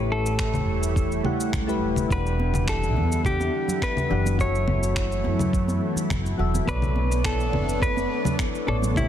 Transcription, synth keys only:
0.00 1.21 A3 medium
0.00 1.21 E4 medium
0.00 1.22 G4 medium
0.00 1.23 C#5 medium
1.23 1.64 A3 medium
1.23 1.64 E4 medium
1.23 1.65 G4 medium
1.23 1.65 F#5 medium
1.67 2.07 A3 medium
1.67 2.07 E4 medium
1.67 2.07 G4 medium
1.67 2.08 B4 loud
2.08 4.06 E3 medium
2.08 4.06 D4 medium
2.08 4.07 G4 medium
2.12 4.08 F#5 medium
4.09 4.35 E3 medium
4.09 4.35 D4 medium
4.09 4.36 G4 medium
4.09 4.36 F#5 medium
4.36 6.34 F#3 medium
4.36 6.35 F#4 medium
4.36 6.36 A4 medium
4.41 6.37 E5 medium
6.38 6.64 F#3 medium
6.38 6.64 F#4 medium
6.38 6.64 A4 medium
6.38 6.65 E5 medium
6.65 8.63 B3 medium
6.65 8.64 A4 medium
6.65 8.65 C#5 medium
6.70 8.65 D5 medium
8.66 8.92 B3 medium
8.66 8.93 A4 medium
8.66 8.93 C#5 medium
8.66 8.93 D5 medium
8.94 9.08 A3 medium
8.94 9.08 E4 medium
8.94 9.08 G4 medium
8.99 9.08 C#5 medium

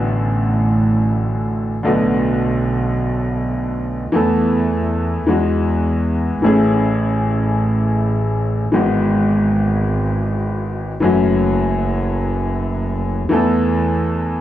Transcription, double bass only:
0.00 1.73 A1 medium
1.85 4.02 B1 medium
4.14 5.23 E2 medium
5.28 6.38 E2 medium
6.44 8.62 A1 medium
8.74 10.90 G#1 medium
11.02 13.20 F#1 medium
13.31 14.40 E2 medium

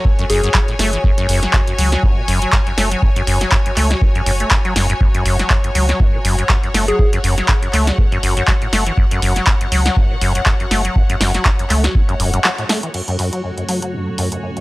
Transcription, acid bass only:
0.05 0.13 F#2 medium
0.19 0.25 F#2 loud
0.30 0.41 F#2 loud
0.44 0.50 F#2 loud
0.55 0.59 F#3 loud
0.68 0.74 A2 medium
0.79 0.91 A3 loud
0.93 0.99 E3 medium
1.04 1.12 F#2 medium
1.18 1.27 F#2 loud
1.29 1.40 F#2 loud
1.43 1.52 F#3 medium
1.54 1.61 F#2 medium
1.68 1.74 F#2 medium
1.79 1.90 F#3 loud
1.92 2.05 F#3 medium
2.03 2.19 F#2 medium
2.17 2.23 B2 medium
2.28 2.40 F#2 loud
2.42 2.51 F#3 medium
2.53 2.60 F#2 medium
2.67 2.73 F#2 medium
2.78 2.89 A3 loud
2.92 3.04 F#3 medium
3.03 3.10 F#2 medium
3.16 3.22 F#2 loud
3.27 3.39 F#2 loud
3.41 3.50 F#3 medium
3.52 3.57 F#2 loud
3.66 3.72 F#2 medium
3.77 3.92 A3 loud
3.91 4.03 F#3 medium
4.02 4.09 F#2 medium
4.15 4.22 F#2 loud
4.26 4.31 F#2 loud
4.40 4.49 A3 medium
4.51 4.59 F#2 medium
4.65 4.74 F#3 loud
4.76 4.87 F#2 loud
4.90 4.93 F#2 loud
5.01 5.08 F#2 medium
5.15 5.24 F#2 loud
5.26 5.37 F#2 loud
5.39 5.49 F#3 medium
5.50 5.58 F#2 medium
5.64 5.70 F#2 medium
5.75 5.87 F#3 loud
5.89 6.02 F#3 medium
6.00 6.15 F#2 medium
6.14 6.20 B2 medium
6.25 6.36 F#2 loud
6.39 6.45 F#2 medium
6.50 6.57 F#2 medium
6.63 6.69 F#2 medium
6.74 6.86 A3 loud
6.88 7.01 F#3 medium
6.99 7.07 F#2 medium
7.13 7.19 F#2 loud
7.24 7.35 F#2 loud
7.38 7.47 F#3 medium
7.49 7.53 F#2 loud
7.63 7.69 F#2 medium
7.74 7.89 A3 loud
7.87 8.00 F#3 medium
7.98 8.06 F#2 medium
8.12 8.18 F#2 loud
8.23 8.35 F#2 loud
8.37 8.43 F#2 loud
8.48 8.52 F#3 loud
8.62 8.68 A2 medium
8.73 8.84 A3 loud
8.87 8.93 E3 medium
8.97 9.05 F#2 medium
9.11 9.20 F#2 loud
9.22 9.34 F#2 loud
9.36 9.45 F#3 medium
9.47 9.55 F#2 medium
9.61 9.67 F#2 medium
9.72 9.83 F#3 loud
9.86 9.98 F#3 medium
9.97 10.12 F#2 medium
10.10 10.17 B2 medium
10.21 10.33 F#2 loud
10.46 10.54 F#2 medium
10.60 10.66 F#2 medium
10.71 10.82 A3 loud
10.85 10.97 F#3 medium
10.96 11.03 F#2 medium
11.10 11.16 F#2 loud
11.21 11.32 F#2 loud
11.34 11.44 F#3 medium
11.45 11.50 F#2 loud
11.59 11.65 F#2 medium
11.70 11.85 A3 loud
11.84 11.97 F#3 medium
11.95 12.03 F#2 medium
12.09 12.15 F#2 loud
12.20 12.31 F#2 loud
12.34 12.40 F#2 loud
12.45 12.49 F#3 loud
12.58 12.64 A2 medium
12.69 12.81 A3 loud
12.83 12.89 E3 medium
12.94 13.02 F#2 medium
13.08 13.17 F#2 loud
13.19 13.30 F#2 medium
13.33 13.42 F#3 medium
13.44 13.51 F#2 medium
13.58 13.64 F#2 medium
13.69 13.80 F#3 medium
13.82 13.95 F#3 medium
13.93 14.09 F#2 medium
14.07 14.13 B2 medium
14.18 14.30 F#2 loud
14.32 14.38 F#2 medium
14.43 14.51 F#2 medium
14.57 14.61 F#2 medium

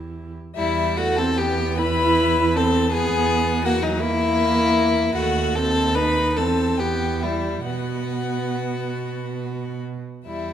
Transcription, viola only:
0.00 0.31 E4 soft
0.57 0.99 G3 medium
0.98 1.20 A3 loud
1.18 1.40 C4 loud
1.38 1.80 B3 medium
1.79 2.57 E4 loud
2.56 2.92 C4 loud
2.93 3.67 B3 loud
3.66 3.83 A#3 medium
3.84 4.02 F#3 medium
4.01 5.16 A#3 loud
5.17 5.59 A3 medium
5.57 5.97 C4 loud
5.96 6.39 D#4 medium
6.37 6.81 C4 medium
6.80 7.24 B3 medium
7.23 7.66 G3 medium
7.66 9.79 B3 medium
10.27 10.53 G3 medium

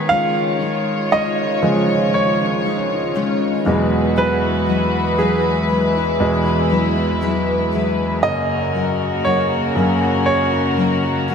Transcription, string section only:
0.00 3.62 D#3 medium
0.10 8.20 G#3 medium
0.10 3.62 F4 medium
0.10 3.63 C#5 medium
3.65 8.19 E3 medium
3.65 5.67 F#4 medium
3.65 8.19 B4 medium
5.69 8.21 E4 medium
8.22 11.35 C#3 medium
8.22 11.35 A#3 medium
8.22 11.35 F#4 medium
8.22 11.35 A#4 medium

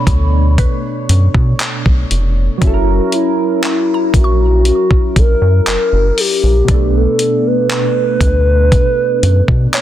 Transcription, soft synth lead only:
0.00 0.34 B5 loud
2.63 3.16 F#4 loud
3.14 4.18 E4 loud
4.16 4.66 F#4 medium
4.67 5.20 F#4 loud
5.18 5.68 A#4 loud
5.69 6.21 A#4 loud
6.20 6.95 G4 loud
6.96 7.48 A4 loud
7.47 9.81 B4 loud

